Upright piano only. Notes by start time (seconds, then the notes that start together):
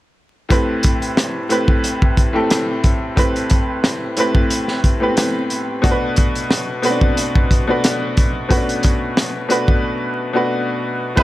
0.49 A2 A3 C4 G4 B4
1.49 A2 A3 C4 G4 B4
2.33 A2 A3 C4 G4 A4
3.16 A2 A3 C4 G4 B4
4.17 A2 A3 C4 G4 B4
5.00 A2 A3 B3 G4 B4
5.08 C4
5.82 B2 A3 D4 F#4 A4
5.91 B4
6.82 B2 A3 C4 F#4 B4
6.90 D4
7.67 B2 A3 D4 F#4 B4
8.49 B2 A3 C#4 F#4 B4
8.57 D4
9.49 B2 A3 D4 F#4 B4
10.33 B2 A3 D4 F#4 B4
11.15 A2 C3 A3 G4 B4